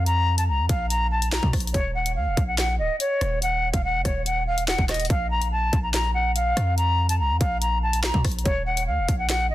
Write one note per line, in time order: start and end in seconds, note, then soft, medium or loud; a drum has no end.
0.00 0.50 F2 loud
0.06 0.36 A#5 loud
0.06 closed hi-hat medium
0.38 0.47 A5 medium
0.38 closed hi-hat medium
0.48 0.60 C2 loud
0.48 0.66 A#5 medium
0.59 0.69 F2 loud
0.69 1.40 A#1 loud
0.69 0.86 F5 medium
0.69 kick loud
0.69 closed hi-hat medium
0.90 1.07 A#5 medium
0.90 closed hi-hat medium
1.11 1.29 A5 medium
1.22 closed hi-hat medium
1.32 1.50 A#5 medium
1.32 snare loud
1.32 clap medium
1.43 1.53 A#2 loud
1.43 kick medium
1.53 1.73 A#1 loud
1.53 kick medium
1.53 cross-stick loud
1.53 closed hi-hat medium
1.53 open hi-hat medium
1.60 closed hi-hat medium
1.67 closed hi-hat medium
1.74 2.18 D#1 loud
1.74 1.91 C#5 loud
1.74 kick loud
1.74 closed hi-hat medium
1.95 2.12 F#5 medium
2.06 closed hi-hat medium
2.16 2.28 D#2 loud
2.16 2.46 F5 medium
2.27 2.37 D#1 loud
2.37 2.81 A#1 loud
2.37 kick medium
2.37 closed hi-hat medium
2.47 2.56 F#5 medium
2.58 2.76 F#5 medium
2.58 snare loud
2.58 clap medium
2.58 closed hi-hat medium
2.79 2.89 C#1 loud
2.79 2.96 D#5 medium
3.00 3.39 C#5 medium
3.00 closed hi-hat medium
3.21 3.71 D#1 loud
3.21 cross-stick loud
3.21 closed hi-hat medium
3.42 3.72 F#5 medium
3.42 closed hi-hat medium
3.73 3.96 D#1 loud
3.73 3.82 F5 medium
3.73 kick loud
3.73 closed hi-hat medium
3.84 4.02 F#5 medium
3.95 4.04 F1 loud
4.05 4.76 D#1 loud
4.05 4.22 C#5 medium
4.05 kick loud
4.05 cross-stick medium
4.05 closed hi-hat medium
4.26 4.43 F#5 medium
4.26 closed hi-hat medium
4.47 4.64 F5 medium
4.58 closed hi-hat medium
4.68 4.85 F#5 medium
4.68 snare loud
4.68 clap medium
4.78 5.09 D#1 loud
4.78 kick medium
4.89 5.06 D#5 medium
4.89 cross-stick medium
4.89 snare medium
4.89 closed hi-hat medium
4.94 closed hi-hat medium
5.00 closed hi-hat medium
5.05 closed hi-hat soft
5.10 5.70 A#1 loud
5.10 5.27 F5 loud
5.10 kick loud
5.10 closed hi-hat medium
5.31 5.48 A#5 medium
5.42 closed hi-hat medium
5.52 5.81 A5 medium
5.73 6.53 A#1 loud
5.73 kick loud
5.73 closed hi-hat medium
5.83 5.92 A#5 medium
5.94 6.11 A#5 medium
5.94 snare loud
5.94 clap medium
5.94 closed hi-hat medium
6.14 6.32 F#5 medium
6.36 6.75 F5 medium
6.36 closed hi-hat medium
6.57 7.21 F2 loud
6.57 cross-stick loud
6.57 closed hi-hat medium
6.77 7.07 A#5 loud
6.77 closed hi-hat medium
7.09 7.18 A5 medium
7.09 closed hi-hat medium
7.19 7.32 C2 loud
7.19 7.37 A#5 medium
7.30 7.40 F2 loud
7.40 8.11 A#1 loud
7.40 7.58 F5 medium
7.40 kick loud
7.40 closed hi-hat medium
7.61 7.79 A#5 medium
7.61 closed hi-hat medium
7.83 8.00 A5 medium
7.93 closed hi-hat medium
8.04 8.21 A#5 medium
8.04 snare loud
8.04 clap medium
8.14 8.24 A#2 loud
8.14 kick medium
8.25 8.45 A#1 loud
8.25 kick medium
8.25 cross-stick loud
8.25 closed hi-hat medium
8.25 open hi-hat medium
8.32 closed hi-hat medium
8.39 closed hi-hat medium
8.45 8.89 D#1 loud
8.45 8.63 C#5 loud
8.45 kick loud
8.45 closed hi-hat medium
8.66 8.84 F#5 medium
8.77 closed hi-hat medium
8.87 9.00 D#2 loud
8.87 9.17 F5 medium
8.98 9.08 D#1 loud
9.08 9.52 A#1 loud
9.08 kick medium
9.08 closed hi-hat medium
9.19 9.28 F#5 medium
9.29 9.47 F#5 medium
9.29 snare medium
9.29 clap medium
9.29 closed hi-hat medium
9.50 9.55 C#1 loud
9.50 9.55 D#5 medium